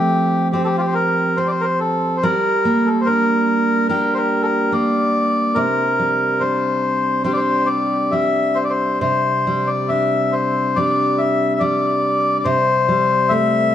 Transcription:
Already playing: steel-string acoustic guitar F3 A3 C4, melodica G4
0.52 steel-string acoustic guitar C4 G4, melodica G4
0.64 melodica G4 A4
0.78 melodica F4 G4
0.87 melodica C5
0.94 melodica A#4
1.37 steel-string acoustic guitar C4, melodica C5
1.47 melodica C5 D5
1.61 melodica A#4 C5
1.80 melodica A4
2.17 melodica C5
2.23 steel-string acoustic guitar G3, melodica A#4
2.65 steel-string acoustic guitar A#3
2.86 melodica A4
3.01 melodica C5
3.06 steel-string acoustic guitar D4, melodica A#4
3.89 steel-string acoustic guitar A#3 D4 G4, melodica A#4
4.14 melodica A#4 C5
4.42 melodica A4 A#4
4.72 steel-string acoustic guitar A#3, melodica D5
5.54 steel-string acoustic guitar C3, melodica A#4
5.99 steel-string acoustic guitar G3
6.40 steel-string acoustic guitar D4, melodica C5
7.24 steel-string acoustic guitar G3 D4 G4, melodica C5
7.33 melodica C5 D5
7.66 melodica D5
8.11 steel-string acoustic guitar G3, melodica E5
8.55 melodica C5
8.64 melodica D5
8.70 melodica C5
9.00 steel-string acoustic guitar C3, melodica C5
9.47 steel-string acoustic guitar G3
9.67 melodica D5
9.88 steel-string acoustic guitar D4, melodica E5
10.32 melodica C5
10.76 steel-string acoustic guitar G3 D4 G4, melodica D5
11.18 melodica E5
11.55 melodica E5
11.60 steel-string acoustic guitar G3, melodica D5
12.39 melodica D5
12.44 steel-string acoustic guitar C3, melodica C5
12.89 steel-string acoustic guitar G3
13.29 steel-string acoustic guitar A3, melodica E5

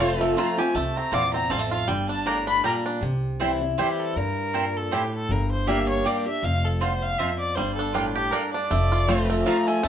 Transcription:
Already playing: upright bass F1, steel-string acoustic guitar F2, five-string banjo A3 C4, fiddle D5
0.00 steel-string acoustic guitar F3 A3 C4 F4, five-string banjo F4, mandolin A5
0.21 five-string banjo A3
0.37 steel-string acoustic guitar F3 A3 C4 F4, mandolin C4 F4 C5 A5, five-string banjo F4, fiddle A#5
0.58 steel-string acoustic guitar C4 F4, five-string banjo G4, fiddle G#5
0.75 upright bass C2, steel-string acoustic guitar C3, five-string banjo A3, fiddle A5
0.96 five-string banjo C4, fiddle A#5
1.11 upright bass A#1, steel-string acoustic guitar E2, mandolin C4 F4 C5 A5, five-string banjo F4, fiddle D6
1.34 five-string banjo C4, fiddle A#5
1.50 upright bass A1, steel-string acoustic guitar F2, five-string banjo G3, mandolin C4 F4 C5 A5, fiddle A5
1.59 five-string banjo A3
1.71 five-string banjo F4, fiddle F5
1.88 upright bass G1, steel-string acoustic guitar G2, five-string banjo G3, fiddle G5
2.09 five-string banjo D4, fiddle A5
2.26 steel-string acoustic guitar A2, mandolin A#3 G4 D5 G5, five-string banjo D4, fiddle A#5
2.47 five-string banjo D4, fiddle B5
2.64 steel-string acoustic guitar A#2, five-string banjo G3, mandolin A#3 G4 D5 G5, fiddle A#5
2.86 five-string banjo D4
3.01 upright bass C2, steel-string acoustic guitar C3
3.40 steel-string acoustic guitar E3 G3 C4 E4, mandolin C4 E4 C5 G5
3.61 steel-string acoustic guitar C4 E4
3.78 steel-string acoustic guitar E3 G3 C4 E4, mandolin C4 E4 C5 G5, fiddle G4
4.00 fiddle A4
4.16 upright bass G2, steel-string acoustic guitar G2, fiddle A#4
4.53 steel-string acoustic guitar A#2, mandolin C4 E4 C5 G5
4.77 fiddle A4
4.91 steel-string acoustic guitar A2, mandolin C4 E4 C5 G5, fiddle G4
5.14 fiddle A4
5.29 upright bass G1, steel-string acoustic guitar G2, fiddle A#4
5.52 fiddle C5
5.67 steel-string acoustic guitar G3 A#3 D4 G4, mandolin A#3 G4 D5 G5, fiddle E5
5.89 fiddle C#5
6.05 steel-string acoustic guitar G3 A#3 D4 G4, mandolin A#3 G4 D5 G5, fiddle D5
6.26 steel-string acoustic guitar D4 G4, fiddle E5
6.43 upright bass F1, steel-string acoustic guitar F2, fiddle F5
6.65 fiddle A4
6.81 steel-string acoustic guitar E2, mandolin C4 F4 C5 A5, fiddle C5
7.02 fiddle F5
7.19 steel-string acoustic guitar F2, mandolin C4 F4 C5 A5, fiddle E5
7.39 fiddle D5
7.55 upright bass G1, steel-string acoustic guitar G2, five-string banjo G3, fiddle C5
7.76 five-string banjo D4, fiddle A4
7.93 steel-string acoustic guitar A2, mandolin A#3 G4 D5 G5, five-string banjo D4, fiddle F4
8.15 fiddle G4, five-string banjo G4
8.31 steel-string acoustic guitar G2, mandolin A#3 G4 D5 G5, five-string banjo D4, fiddle A#4
8.53 five-string banjo D4, fiddle D5
8.70 upright bass F1, steel-string acoustic guitar F2, five-string banjo A3
8.92 five-string banjo F4
9.07 steel-string acoustic guitar F3 A3 C4 F4, mandolin C4 F4 C5 A5, five-string banjo C4
9.30 five-string banjo A3
9.45 steel-string acoustic guitar F3 A3 C4 F4, five-string banjo F3, mandolin C4 F4 C5 A5, fiddle A#5
9.67 five-string banjo A3, fiddle G#5
9.83 upright bass C2, steel-string acoustic guitar C3, five-string banjo A3, fiddle A5

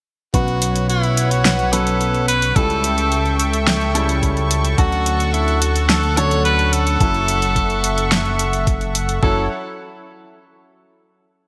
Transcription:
0.34 analog synth bass B1, grand piano B2 F#3 B3 C#4 B4, tenor saxophone F#4, supersaw synth B4 C#5 F#5 C#6, kick, closed hi-hat
0.48 closed hi-hat
0.62 closed hi-hat
0.76 closed hi-hat
0.89 tenor saxophone E4, closed hi-hat
1.03 closed hi-hat
1.17 closed hi-hat
1.31 tenor saxophone F#4, closed hi-hat
1.45 snare, closed hi-hat
1.59 closed hi-hat
1.73 grand piano B2 F#3 B3 C#4 B4, tenor saxophone A4, closed hi-hat
1.87 closed hi-hat
2.01 closed hi-hat
2.15 closed hi-hat
2.28 tenor saxophone B4, closed hi-hat
2.42 closed hi-hat
2.56 analog synth bass C#2, grand piano C#3 G3 C#4 E4 A4, supersaw synth A4 E5 G5, tenor saxophone A4, kick, closed hi-hat
2.70 closed hi-hat
2.84 closed hi-hat
2.98 closed hi-hat
3.12 closed hi-hat
3.26 closed hi-hat
3.40 closed hi-hat
3.53 closed hi-hat
3.67 snare, closed hi-hat
3.81 closed hi-hat
3.95 grand piano C#3 G3 C#4 E4 A4, closed hi-hat
4.09 closed hi-hat
4.23 kick, closed hi-hat
4.37 closed hi-hat
4.51 closed hi-hat
4.65 closed hi-hat
4.78 analog synth bass D2, grand piano F#3 C#4 D4 A4, tenor saxophone F#4, supersaw synth F#5, kick, closed hi-hat
4.92 closed hi-hat
5.06 closed hi-hat
5.20 closed hi-hat
5.34 tenor saxophone E4, closed hi-hat
5.48 closed hi-hat
5.62 tenor saxophone F#4, closed hi-hat
5.76 closed hi-hat
5.89 tenor saxophone A4, snare, closed hi-hat
6.03 closed hi-hat
6.17 grand piano F#3 C#4 D4 A4, tenor saxophone C#5, closed hi-hat
6.31 closed hi-hat
6.45 tenor saxophone B4, closed hi-hat
6.59 closed hi-hat
6.73 tenor saxophone A4, closed hi-hat
6.87 closed hi-hat
7.00 analog synth bass F#1, grand piano F#3 C#4 E4 A4, supersaw synth E5 C#6, kick, closed hi-hat
7.14 closed hi-hat
7.28 closed hi-hat
7.42 closed hi-hat
7.56 kick, closed hi-hat
7.70 closed hi-hat
7.84 closed hi-hat
7.98 closed hi-hat
8.12 snare, closed hi-hat
8.26 closed hi-hat
8.39 closed hi-hat
8.53 closed hi-hat
8.67 kick, closed hi-hat
8.81 closed hi-hat
8.95 closed hi-hat
9.09 closed hi-hat
9.23 analog synth bass F#1, grand piano F#3 C#4 E4 A4, supersaw synth E4 A4 C#5 F#5, tenor saxophone A4, kick

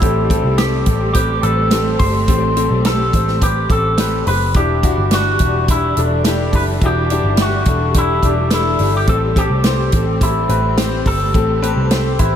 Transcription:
Already playing: string section G3, clean electric guitar E4
0.01 picked electric bass A1, grand piano A2 C4 G4 A4, string section A3 C4, kick, closed hi-hat
0.30 grand piano C4 G4 A4, kick, closed hi-hat
0.44 picked electric bass C2
0.58 grand piano C4 G4 A4, clean electric guitar G4, snare, closed hi-hat
0.86 picked electric bass A1, grand piano C4 G4 A4, kick, closed hi-hat
1.13 grand piano C4 G4 B4, clean electric guitar G4, kick, closed hi-hat
1.43 picked electric bass A1, grand piano C4 G4 B4, clean electric guitar A4, closed hi-hat
1.71 grand piano C4 G4 A4, snare, closed hi-hat
1.99 picked electric bass G1, grand piano C4 G4 A4, clean electric guitar C5, kick, open hi-hat
2.28 picked electric bass A1, grand piano A2 C4 G4 A4, kick, closed hi-hat
2.56 grand piano C4 G4 A4, closed hi-hat
2.70 picked electric bass B1
2.85 grand piano C4 G4 A4, clean electric guitar A4, snare, closed hi-hat
3.13 picked electric bass A1, grand piano C4 G4 C5, kick, closed hi-hat
3.28 snare
3.42 grand piano C4 G4 B4, clean electric guitar G4, kick, closed hi-hat
3.69 picked electric bass A1, grand piano C4 G4 A4, clean electric guitar A4, kick, closed hi-hat
3.98 grand piano C4 G4 B4, snare, closed hi-hat
4.27 picked electric bass F#1, grand piano C4 G4 C5, clean electric guitar B4, open hi-hat
4.54 picked electric bass E1, string section E3 G3 D4, grand piano E3 D4 E4 G4, clean electric guitar G4, kick, closed hi-hat
4.83 grand piano D4 E4 F#4, kick, closed hi-hat
4.98 picked electric bass G1
5.11 grand piano D4 E4 G4, clean electric guitar F#4, snare, closed hi-hat
5.39 picked electric bass E1, grand piano D4 E4 G4, kick, closed hi-hat
5.68 grand piano D4 E4 G4, clean electric guitar E4, kick, closed hi-hat
5.97 picked electric bass E1, grand piano D4 E4 A4, clean electric guitar D4, closed hi-hat
6.25 grand piano D4 E4 G4, snare, closed hi-hat
6.53 picked electric bass F#1, grand piano D4 E4 G4, clean electric guitar B4, kick, open hi-hat
6.81 picked electric bass E1, grand piano E3 D4 E4 F#4, clean electric guitar G4, kick, closed hi-hat
7.10 grand piano D4 E4 G4, closed hi-hat
7.24 picked electric bass G1
7.37 grand piano D4 E4 G4, snare, closed hi-hat
7.42 clean electric guitar F#4
7.65 picked electric bass E1, grand piano D4 E4 A4, kick, closed hi-hat
7.94 grand piano D4 E4 G4, clean electric guitar E4, kick, closed hi-hat
8.22 picked electric bass E1, grand piano D4 E4 G4, clean electric guitar D4, kick, closed hi-hat
8.51 grand piano D4 E4 A4, clean electric guitar E4, snare, closed hi-hat
8.79 picked electric bass G1, grand piano D4 E4 G4, open hi-hat
8.97 clean electric guitar G4
9.07 picked electric bass A1, grand piano A2 C4 G4 A4, string section A3 C4, clean electric guitar A4, kick, closed hi-hat
9.36 grand piano C4 G4 A4, clean electric guitar G4, kick, closed hi-hat
9.50 picked electric bass C2
9.64 grand piano C4 G4 C5, snare, closed hi-hat
9.92 picked electric bass A1, grand piano C4 G4 A4, kick, closed hi-hat
10.21 grand piano C4 G4 A4, clean electric guitar E4, kick, closed hi-hat
10.49 picked electric bass A1, grand piano C4 G4 B4, closed hi-hat
10.77 grand piano C4 G4 C5, snare, closed hi-hat
11.06 picked electric bass G1, grand piano C4 G4 A4, clean electric guitar A4, kick, open hi-hat
11.34 picked electric bass A1, grand piano A2 C4 G4 A4, kick, closed hi-hat
11.62 grand piano C4 G4 B4, closed hi-hat
11.76 picked electric bass C2
11.91 grand piano C4 G4 C5, snare, closed hi-hat
12.19 picked electric bass A1, grand piano C4 G4 B4, clean electric guitar E4, kick, closed hi-hat

